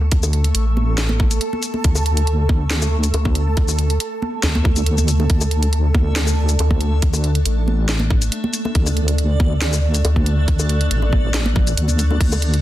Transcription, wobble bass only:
0.00 0.53 D2 medium
0.55 1.40 A1 medium
1.84 3.12 D2 loud
3.14 3.99 D2 medium
4.43 5.28 D2 loud
5.30 6.58 D2 loud
6.59 7.44 D2 medium
7.46 8.30 A1 medium
8.75 10.03 D2 loud
10.05 10.89 D2 medium
10.91 11.76 A1 medium
11.78 12.19 D2 medium
12.21 12.62 D2 medium

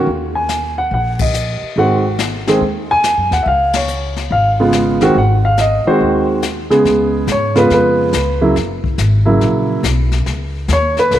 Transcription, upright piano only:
0.35 0.74 G#5 medium
0.78 0.92 F#5 medium
0.94 1.20 F#5 medium
1.21 1.73 D#5 medium
1.78 2.02 D#3 medium
1.78 2.02 G#3 medium
1.78 2.02 C4 soft
1.78 2.02 F#4 medium
1.78 2.05 F#5 medium
2.48 2.60 D#3 medium
2.48 2.60 G#3 medium
2.48 2.61 C4 medium
2.48 2.61 G#4 medium
2.91 3.30 G#5 loud
3.33 3.46 F#5 medium
3.43 3.46 E5 soft
3.48 3.74 F5 medium
3.76 4.28 C#5 medium
4.32 4.49 F5 medium
4.60 4.99 C#3 medium
4.60 4.99 G#3 medium
4.60 4.99 B3 medium
4.60 5.00 F4 medium
5.02 5.14 D#3 medium
5.02 5.15 G#3 medium
5.02 5.15 C4 medium
5.02 5.15 F#4 medium
5.18 5.44 F#5 medium
5.45 5.58 F5 medium
5.60 5.87 D#5 medium
5.87 6.41 D#3 medium
5.87 6.41 G#3 medium
5.87 6.41 C4 medium
5.87 6.41 F#4 medium
5.87 6.26 C5 medium
6.70 7.25 C#3 medium
6.70 7.25 G#3 medium
6.70 7.25 B3 medium
6.70 7.25 G#4 medium
7.32 7.57 C#5 medium
7.55 8.10 C#3 medium
7.55 8.10 G#3 medium
7.55 8.10 B3 medium
7.55 8.10 F4 medium
7.55 7.71 B4 medium
7.73 8.39 B4 medium
8.41 8.54 C#3 medium
8.41 8.54 F#3 medium
8.41 8.54 A#3 medium
8.41 8.54 E4 medium
9.25 9.80 C#3 medium
9.25 9.80 F#3 medium
9.25 9.80 A#3 medium
9.25 9.80 E4 medium
10.73 10.98 C#5 medium
10.99 11.12 B4 medium
11.14 11.19 B4 medium

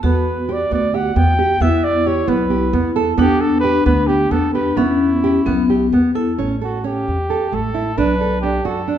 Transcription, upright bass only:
0.03 0.64 E2 medium
0.71 1.11 D2 medium
1.16 1.56 E2 medium
1.60 2.21 E2 medium
2.28 2.69 B1 loud
2.73 3.14 E2 loud
3.18 3.79 E2 medium
3.86 4.27 D2 medium
4.31 4.72 E2 medium
4.77 5.38 E2 medium
5.46 5.88 B1 medium
5.92 6.34 E2 medium
6.39 7.00 A1 medium
7.08 7.48 E2 medium
7.53 7.93 A1 medium
7.98 8.57 B1 medium
8.65 8.98 F#2 medium

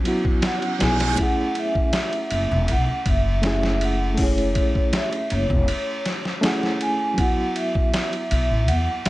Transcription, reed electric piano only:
0.00 0.04 F#3 medium
0.00 0.76 F#3 medium
0.00 0.06 B3 medium
0.00 0.07 E4 medium
0.00 0.08 F#4 medium
0.06 0.76 B3 medium
0.06 0.77 E4 medium
0.06 0.78 F#4 medium
0.79 1.13 F#3 medium
0.79 1.14 B3 medium
0.79 1.15 E4 medium
0.84 1.15 G#4 medium
1.14 3.37 A3 medium
1.14 3.38 C#4 medium
1.20 3.40 E4 medium
1.20 3.42 G#4 medium
3.42 4.13 A3 medium
3.42 4.14 C#4 medium
3.42 4.15 E4 medium
3.47 4.16 G#4 loud
4.14 6.37 A3 medium
4.14 6.39 C#4 medium
4.21 6.40 E4 medium
4.21 6.42 G#4 medium
6.41 7.13 A3 medium
6.41 7.14 C#4 medium
6.41 7.14 E4 medium
6.45 7.15 G#4 medium
7.14 9.09 F#3 medium
7.14 9.09 B3 medium
7.21 9.09 E4 medium
7.21 9.09 F#4 medium

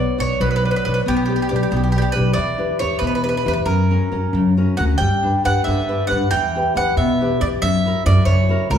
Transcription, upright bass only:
0.19 0.33 B1 medium
0.40 0.70 B1 medium
0.86 0.99 B1 medium
1.07 1.36 B1 medium
1.52 1.65 B1 medium
1.72 2.00 B1 medium
2.17 2.30 B1 medium
2.37 2.66 E2 medium
2.82 2.95 E2 medium
3.01 3.30 E2 medium
3.46 3.60 E2 medium
3.66 3.96 F#2 medium
4.12 4.26 F#2 medium
4.33 4.63 F#2 medium
4.80 4.93 D2 medium
5.01 5.30 G2 medium
5.46 5.60 G2 medium
5.68 5.96 G2 medium
6.11 6.25 G2 medium
6.32 6.60 E2 medium
6.76 6.90 E2 medium
6.97 7.25 E2 medium
7.41 7.55 E2 medium
7.62 7.90 F#2 medium
8.06 8.19 F#2 medium
8.26 8.55 F#2 medium
8.70 8.78 C#2 medium

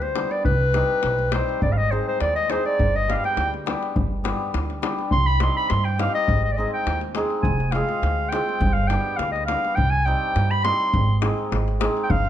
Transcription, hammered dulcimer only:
0.00 0.14 G3 medium
0.16 0.50 G3 medium
0.16 0.38 B3 medium
0.16 0.39 D4 medium
0.16 0.39 G4 medium
0.73 1.32 G3 medium
0.73 0.96 C4 medium
0.73 0.97 D#4 medium
0.73 0.97 G4 medium
1.33 1.68 G3 medium
1.33 1.55 C4 medium
1.33 1.56 D#4 medium
1.33 1.56 G4 medium
1.91 2.49 G#3 medium
1.91 2.14 C4 medium
1.91 2.14 D#4 medium
1.91 2.14 G#4 medium
2.51 2.84 G#3 medium
2.51 2.73 C4 medium
2.51 2.73 D#4 medium
2.51 2.73 G#4 medium
3.08 3.65 G3 medium
3.08 3.31 B3 soft
3.08 3.31 D4 medium
3.08 3.31 G4 medium
3.66 4.01 G3 medium
3.66 3.89 B3 medium
3.66 3.89 D4 medium
3.66 3.89 G4 medium
4.24 4.81 G3 medium
4.24 4.47 B3 medium
4.24 4.47 D4 medium
4.24 4.47 G4 medium
4.82 5.18 G3 medium
4.82 5.05 B3 medium
4.82 5.05 D4 medium
4.82 5.06 G4 medium
5.41 5.97 G3 medium
5.41 5.64 C4 medium
5.41 5.64 D#4 medium
5.41 5.64 G4 medium
5.99 6.34 G3 medium
5.99 6.22 C4 medium
5.99 6.22 D#4 medium
5.99 6.22 G4 medium
6.58 7.14 G#3 medium
6.58 6.80 C4 medium
6.58 6.80 D#4 medium
6.58 6.81 G#4 medium
7.16 7.50 G#3 medium
7.16 7.38 C4 medium
7.16 7.38 D#4 medium
7.16 7.39 G#4 medium
7.75 8.32 G#3 medium
7.75 7.97 C4 medium
7.75 7.97 F4 medium
7.75 7.97 G#4 medium
8.33 8.66 G#3 medium
8.33 8.55 C4 medium
8.33 8.55 F4 medium
8.33 8.55 G#4 medium
8.91 9.47 G3 medium
8.91 9.13 B3 medium
8.91 9.13 D4 medium
8.91 9.13 G4 medium
9.48 9.82 G3 medium
9.48 9.70 B3 medium
9.48 9.71 D4 medium
9.48 9.71 G4 medium
10.06 10.63 G3 medium
10.06 10.28 C4 medium
10.06 10.29 D#4 medium
10.06 10.29 G4 medium
10.64 10.98 G3 medium
10.64 10.86 C4 medium
10.64 10.86 D#4 medium
10.64 10.87 G4 medium
11.21 11.79 G#3 medium
11.21 11.44 C4 medium
11.21 11.44 D#4 medium
11.21 11.45 G#4 medium
11.80 12.14 G#3 medium
11.80 12.02 C4 medium
11.80 12.03 D#4 medium
11.80 12.03 G#4 medium

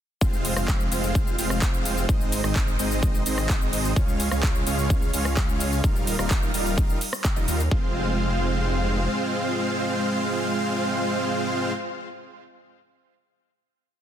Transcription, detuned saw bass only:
0.21 0.54 F1 loud
0.56 0.89 F1 loud
0.92 1.36 F1 loud
1.39 2.07 F1 loud
2.09 2.42 G#1 loud
2.44 2.77 G#1 loud
2.79 3.24 G#1 loud
3.26 3.94 G#1 loud
3.96 4.29 C#2 loud
4.32 4.64 C#2 loud
4.67 5.11 C#2 loud
5.14 5.82 C#2 loud
5.84 6.17 D#1 loud
6.19 6.52 D#1 loud
6.54 6.96 D#1 loud
7.36 7.46 D#1 loud
7.48 7.69 D#2 loud
7.71 9.08 F1 loud

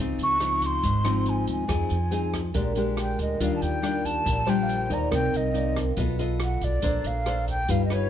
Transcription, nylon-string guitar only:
0.00 0.81 C#3 medium
0.00 0.37 F3 soft
0.00 0.37 C4 medium
0.00 0.37 D#4 medium
0.40 0.83 F3 medium
0.40 0.83 C4 medium
0.40 0.83 D#4 medium
0.83 1.67 G#2 medium
1.04 1.65 F3 medium
1.04 1.65 C4 medium
1.04 1.65 D#4 medium
1.68 2.52 F3 medium
1.68 1.96 C4 medium
1.68 1.96 D#4 medium
1.68 1.96 G#4 medium
2.11 2.40 C4 medium
2.11 2.40 D#4 medium
2.11 2.40 G#4 medium
2.54 3.38 A#2 medium
2.54 2.72 G#3 medium
2.54 2.72 D4 medium
2.54 2.73 G4 medium
2.76 3.37 G#3 medium
2.76 3.37 D4 medium
2.76 3.37 G4 medium
3.40 4.24 D#3 medium
3.40 3.80 G3 medium
3.40 3.80 D4 medium
3.40 3.80 F4 medium
3.82 4.44 G3 medium
3.82 4.44 D4 medium
3.82 4.44 F4 medium
4.25 5.09 A#2 medium
4.46 4.86 G3 medium
4.46 4.87 D4 medium
4.46 4.87 F4 medium
4.90 5.51 D#4 medium
4.90 5.51 A#4 medium
4.90 5.51 D5 medium
5.11 5.95 C4 medium
5.54 5.83 D#4 medium
5.54 5.83 A#4 medium
5.54 5.84 D5 medium
5.97 6.81 B3 medium
5.97 6.15 F4 medium
5.97 6.15 A4 medium
5.97 6.16 D#5 medium
6.19 6.80 F4 medium
6.19 6.80 A4 medium
6.19 6.80 D#5 medium
6.83 7.67 A#3 medium
6.83 7.23 D4 medium
6.83 7.23 A4 medium
6.83 7.23 C5 medium
7.26 7.55 D4 medium
7.26 7.55 A4 medium
7.26 7.55 C5 medium
7.68 8.10 G3 medium
7.68 7.82 D#4 medium
7.68 7.82 F4 medium
7.68 7.82 B4 medium
7.91 8.10 D#4 medium
7.91 8.10 F4 medium
7.91 8.10 B4 medium

